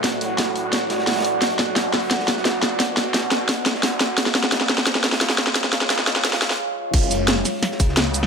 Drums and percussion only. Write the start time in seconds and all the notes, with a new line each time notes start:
0.04 snare, closed hi-hat
0.21 closed hi-hat
0.38 snare, closed hi-hat
0.56 closed hi-hat
0.73 snare, closed hi-hat
0.90 snare, closed hi-hat
0.99 snare
1.07 snare, closed hi-hat
1.11 snare, closed hi-hat
1.16 snare, closed hi-hat
1.20 snare, closed hi-hat
1.25 closed hi-hat
1.42 snare, closed hi-hat
1.50 closed hi-hat
1.59 snare, closed hi-hat
1.76 snare, closed hi-hat
1.94 snare, closed hi-hat, open hi-hat
2.11 snare, closed hi-hat
2.19 snare
2.28 snare, closed hi-hat
2.37 snare
2.45 snare, closed hi-hat
2.62 snare, closed hi-hat
2.80 snare, closed hi-hat
2.97 snare, closed hi-hat
3.14 snare, closed hi-hat
3.31 snare, closed hi-hat
3.49 snare, closed hi-hat
3.65 snare, closed hi-hat
3.75 snare
3.83 snare, closed hi-hat
4.01 snare, closed hi-hat
4.18 snare, closed hi-hat
4.26 snare, closed hi-hat
4.35 snare, closed hi-hat
4.44 snare
4.52 snare, closed hi-hat
4.61 snare
4.69 snare, closed hi-hat, open hi-hat
4.78 snare
4.87 snare, closed hi-hat
4.95 snare
5.04 snare, closed hi-hat
5.12 snare, closed hi-hat
5.21 snare, closed hi-hat
5.29 snare, closed hi-hat
5.38 snare, closed hi-hat
5.47 snare
5.55 snare, closed hi-hat
5.64 snare
5.73 snare, closed hi-hat
5.81 snare
5.90 snare, closed hi-hat
5.99 snare
6.07 snare, closed hi-hat
6.16 snare
6.24 snare, closed hi-hat
6.33 snare, closed hi-hat
6.42 snare, closed hi-hat
6.50 snare, closed hi-hat
6.94 kick, closed hi-hat, crash
7.02 closed hi-hat
7.11 closed hi-hat, shaker
7.27 snare, closed hi-hat, shaker
7.45 snare, closed hi-hat, open hi-hat, shaker
7.62 snare, closed hi-hat
7.71 snare
7.80 kick, closed hi-hat, shaker
7.89 snare
7.97 snare, closed hi-hat, shaker
8.14 closed hi-hat, shaker
8.23 snare